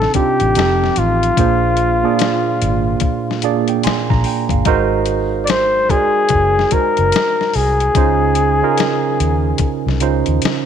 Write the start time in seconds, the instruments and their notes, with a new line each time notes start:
Already playing: tine electric piano C3 C4 D4 D#4 F4, flugelhorn A4
0.02 snare
0.14 tine electric piano C3 C4 D4 D#4 F4, flugelhorn G4, kick, closed hi-hat
0.40 fingered electric bass A1, closed hi-hat
0.55 fingered electric bass F1, tine electric piano F3 C4 D#4 G4 A4, snare, closed hi-hat
0.84 snare
0.96 fingered electric bass A1, flugelhorn F4, closed hi-hat
1.23 closed hi-hat
1.37 fingered electric bass A#1, tine electric piano A#2 A#3 D4 G#4 C5, kick, closed hi-hat
1.77 closed hi-hat
2.03 tine electric piano A#2 A#3 D4 G#4 D5
2.19 snare, closed hi-hat
2.62 fingered electric bass G#1, closed hi-hat
3.00 kick, closed hi-hat
3.31 snare
3.42 tine electric piano A#2 A#3 D4 G#4 D5 F5, closed hi-hat
3.68 tine electric piano G5, closed hi-hat
3.83 tine electric piano G#5 C6, muted fingered electric bass stroke, snare, closed hi-hat
4.10 fingered electric bass A#1, tine electric piano A#5, kick, snare
4.24 tine electric piano G5, open hi-hat
4.49 fingered electric bass G1, tine electric piano F5, kick, closed hi-hat
4.65 fingered electric bass G#1, tine electric piano G#3 D#4 F#4 A#4 C5, kick, closed hi-hat
5.06 closed hi-hat
5.45 flugelhorn D5, closed hi-hat
5.50 flugelhorn C5, snare
5.89 tine electric piano G#3 D#4 F#4 A#4 D5, flugelhorn G#4, kick, closed hi-hat
6.29 fingered electric bass F#1, kick, closed hi-hat
6.59 snare
6.71 tine electric piano G#3 D#4 F#4 A#4 C5, flugelhorn A#4, kick, closed hi-hat
6.97 fingered electric bass F#1, closed hi-hat
7.12 snare, closed hi-hat
7.41 snare
7.54 fingered electric bass C2, flugelhorn G#4, open hi-hat
7.80 closed hi-hat
7.95 fingered electric bass C#2, tine electric piano C#3 C#4 D#4 F4 C5, kick, closed hi-hat
8.35 closed hi-hat
8.62 tine electric piano C#3 C#4 D#4 F4 A#4
8.78 snare, closed hi-hat
9.20 fingered electric bass D#2, closed hi-hat
9.58 kick, closed hi-hat
9.86 fingered electric bass C2, snare
10.00 fingered electric bass C#2, tine electric piano C#3 C#4 D#4 F4 C5, closed hi-hat
10.26 fingered electric bass D#2, closed hi-hat
10.42 muted fingered electric bass stroke, snare, closed hi-hat